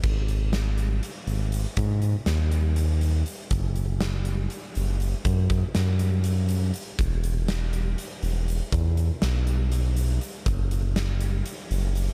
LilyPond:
<<
  \new Staff \with { instrumentName = "Analog synth bass" } { \clef bass \time 7/8 \key gis \minor \tempo 4 = 121 gis,,2~ gis,,8 gis,,4 | gis,4 dis,2~ dis,8 | fis,,2~ fis,,8 fis,,4 | fis,4 fis,2~ fis,8 |
e,,2~ e,,8 e,,4 | e,4 b,,2~ b,,8 | fis,,2~ fis,,8 fis,,4 | }
  \new DrumStaff \with { instrumentName = "Drums" } \drummode { \time 7/8 <cymc bd>8 hh8 <hh sn>8 hh8 hh8 hh8 hh8 | <hh bd>8 hh8 <hh sn>8 hh8 hh8 hh8 hh8 | <hh bd>8 hh8 <hh sn>8 hh8 hh8 hh8 hh8 | <hh bd>8 <hh bd>8 <hh sn>8 hh8 hh8 hh8 hh8 |
<hh bd>8 hh8 <hh sn>8 hh8 hh8 hh8 hh8 | <hh bd>8 hh8 <hh sn>8 hh8 hh8 hh8 hh8 | <hh bd>8 hh8 <hh sn>8 hh8 hh8 hh8 hh8 | }
>>